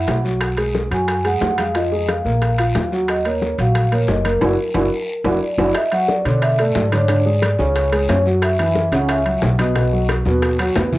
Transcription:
Already playing: grand piano E4 E5, vibraphone F#5
0.08 upright bass B1, high bongo, low bongo, high conga, high timbale, low timbale, short guiro
0.24 grand piano F#3 F#4, short guiro
0.41 high bongo, high conga, high timbale, long guiro
0.57 grand piano G#3 G#4, high conga, high timbale
0.75 high bongo, high conga, low timbale, short guiro
0.91 upright bass F#2, grand piano F#3 F#4, vibraphone G#5, high timbale, short guiro
1.08 high bongo, high conga, high timbale, long guiro
1.25 grand piano G#3 G#4, vibraphone F#5, high conga, high timbale
1.41 upright bass F2, high bongo, low bongo, high conga, low timbale, short guiro
1.58 grand piano G#3 G#4, vibraphone F5, high conga, high timbale, short guiro
1.75 grand piano F3 F4, vibraphone D#5, high bongo, high conga, high timbale, long guiro
1.91 grand piano G#3 G#4, high bongo, high conga
2.08 vibraphone F5, high bongo, high conga, high timbale, low timbale, short guiro
2.25 upright bass A#1, grand piano A#3 A#4, high bongo, short guiro
2.42 high bongo, high conga, high timbale, long guiro
2.58 grand piano F4 F5, high bongo, high conga, high timbale
2.75 upright bass D#2, high bongo, low bongo, high conga, high timbale, low timbale, short guiro
2.92 grand piano F#3 F#4, short guiro
3.08 vibraphone D#5, high bongo, high conga, high timbale, long guiro
3.25 grand piano A#3 A#4, vibraphone C#5, high conga, high timbale
3.42 high bongo, high conga, low timbale, short guiro
3.58 upright bass A#1, grand piano F#3 F#4, vibraphone F5, high conga, high timbale, short guiro
3.75 high bongo, high conga, high timbale, long guiro
3.92 grand piano A#3 A#4, vibraphone C#5, high conga, high timbale
4.08 upright bass F#1, vibraphone D#5, high bongo, low bongo, high conga, low timbale, short guiro
4.25 grand piano A#3 A#4, vibraphone A#4, high conga, high timbale, short guiro
4.41 upright bass F#1, grand piano D4 E4 F#4, low bongo, high conga, high timbale, long guiro
4.74 upright bass F#1, grand piano D4 E4 F#4, low bongo, high conga, high timbale, long guiro
5.24 upright bass F#1, grand piano D4 E4 F#4, low bongo, high conga, high timbale, long guiro
5.43 vibraphone D5
5.58 upright bass F#1, grand piano D4 E4 F#4, low bongo, high conga, high timbale, long guiro
5.72 vibraphone D#5 E5, high bongo, high timbale, long guiro
5.76 high conga
5.92 grand piano F#3 F#4, vibraphone F#5, high conga, high timbale
6.09 vibraphone D5, high bongo, high conga, low timbale, short guiro
6.25 upright bass B2, grand piano D3 D4, vibraphone C#5, high conga, high timbale, short guiro
6.42 vibraphone E5, high bongo, high conga, high timbale, long guiro
6.59 grand piano A3 A4, vibraphone D5, high conga, high timbale
6.75 upright bass G#2, high bongo, low bongo, high conga, low timbale, short guiro
6.92 grand piano D3 D4, vibraphone C#5, high conga, high timbale, short guiro
7.08 grand piano D3 D4, high bongo, high conga, high timbale, long guiro
7.25 grand piano G#3 G#4, vibraphone D5, high bongo, high conga
7.42 high bongo, high conga, high timbale, low timbale, short guiro
7.59 upright bass C#2, grand piano C#3 C#4, vibraphone C#5, high bongo, short guiro
7.76 high bongo, high conga, high timbale, long guiro
7.92 grand piano G#3 G#4, high bongo, high conga, high timbale
8.09 upright bass F#2, grand piano C#4 C#5, high bongo, low bongo, high conga, high timbale, low timbale, short guiro
8.26 grand piano F#3 F#4, short guiro
8.42 vibraphone E5, high bongo, high conga, high timbale, long guiro
8.59 grand piano E3 E4, vibraphone E5, high conga, high timbale
8.75 high bongo, high conga, low timbale, short guiro
8.92 upright bass C#2, grand piano C#3 C#4, vibraphone F#5, high conga, high timbale, short guiro
9.08 vibraphone E5, high bongo, high conga, high timbale, long guiro
9.26 grand piano F#3 F#4, high conga, high timbale
9.42 upright bass B1, high bongo, low bongo, high conga, low timbale, short guiro
9.59 grand piano B2 B3, vibraphone D#5, high conga, high timbale, short guiro
9.75 grand piano B2 B3, high bongo, high timbale, long guiro
9.92 grand piano F#3 F#4, high bongo, high conga
10.09 high bongo, high conga, high timbale, low timbale, short guiro
10.25 upright bass D#2, grand piano B2 B3, high bongo, high conga, short guiro
10.42 high bongo, high timbale, long guiro
10.59 grand piano F#3 F#4, high bongo, high timbale
10.75 upright bass E2, grand piano B3 B4, high bongo, low bongo, low conga, high timbale, low timbale, short guiro
10.92 grand piano E3 E4, low conga, short guiro

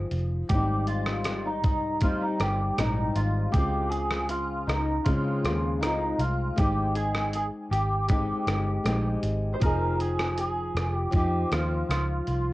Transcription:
Already playing: nylon-string guitar F3 C4 D#4 G#4
0.11 fingered electric bass F1, closed hi-hat
0.49 fingered electric bass G#1, nylon-string guitar G#2 G3 C4, clean electric guitar G4, kick, closed hi-hat
0.54 nylon-string guitar D#4
0.87 clean electric guitar F4, closed hi-hat
1.06 cross-stick
1.24 cross-stick, closed hi-hat
1.45 clean electric guitar D#4
1.64 fingered electric bass C2, clean electric guitar D#4, kick, closed hi-hat
2.01 nylon-string guitar G3 C4 D#4, clean electric guitar F4, kick, closed hi-hat
2.21 clean electric guitar D#4
2.40 fingered electric bass G1, clean electric guitar G4, cross-stick, closed hi-hat
2.77 fingered electric bass A#1, nylon-string guitar G#2 G3 C4, clean electric guitar D#4, cross-stick, closed hi-hat
2.81 nylon-string guitar D#4
3.16 fingered electric bass G#1, clean electric guitar F4, closed hi-hat
3.52 fingered electric bass C#2, nylon-string guitar C#3 G#3, clean electric guitar G4, kick, closed hi-hat
3.56 nylon-string guitar C4 F4
3.90 clean electric guitar G#4, closed hi-hat
4.11 cross-stick
4.29 clean electric guitar F4, closed hi-hat
4.67 fingered electric bass C#2, clean electric guitar D#4, cross-stick, closed hi-hat
5.05 nylon-string guitar C#3 G#3 C4 F4, fingered electric bass C#3, clean electric guitar F4, kick, closed hi-hat
5.44 fingered electric bass D#2, cross-stick, closed hi-hat
5.81 fingered electric bass C#2, nylon-string guitar G#3 C4, clean electric guitar D#4, cross-stick, closed hi-hat
5.85 nylon-string guitar F4
6.18 fingered electric bass C2, clean electric guitar F4, closed hi-hat
6.56 fingered electric bass G#1, nylon-string guitar G#3 C4, clean electric guitar G4, kick, closed hi-hat
6.60 nylon-string guitar D#4
6.95 clean electric guitar G#4, closed hi-hat
7.15 cross-stick
7.33 clean electric guitar G#4, closed hi-hat
7.71 fingered electric bass G#1, clean electric guitar G4, closed hi-hat
8.08 nylon-string guitar G#3 C4 D#4 G4, clean electric guitar G4, kick, closed hi-hat
8.47 fingered electric bass G1, cross-stick, closed hi-hat
8.84 fingered electric bass A#1, nylon-string guitar G#3 C4 D#4 G4, cross-stick, closed hi-hat
9.23 fingered electric bass G#1, closed hi-hat
9.54 clean electric guitar C5
9.60 fingered electric bass F1, nylon-string guitar F3 C4 D#4, clean electric guitar A#4, kick, closed hi-hat
9.65 nylon-string guitar G#4
10.00 clean electric guitar G#4, closed hi-hat
10.19 cross-stick
10.38 clean electric guitar G#4, closed hi-hat
10.75 fingered electric bass F1, cross-stick, closed hi-hat
10.92 clean electric guitar G4
11.11 fingered electric bass F2, nylon-string guitar F3 C4 D#4, kick, closed hi-hat
11.16 clean electric guitar G4
11.52 fingered electric bass D#2, clean electric guitar F4, cross-stick, closed hi-hat
11.89 fingered electric bass C#2, clean electric guitar F4, cross-stick, closed hi-hat
12.27 fingered electric bass C2, closed hi-hat

